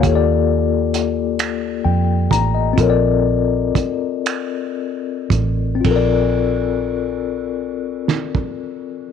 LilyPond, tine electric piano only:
\new Staff \with { instrumentName = "Tine electric piano" } { \time 6/8 \key bes \major \tempo 4. = 39 << { r2 g''8 bes''16 ees''16~ | ees''16 r2 r8. | r2. | } \\ { <bes f' g' a' des'' d''>2. | <c' f' a' bes' des'' d''>2. | <c' f' a' bes' d''>2. | } >> }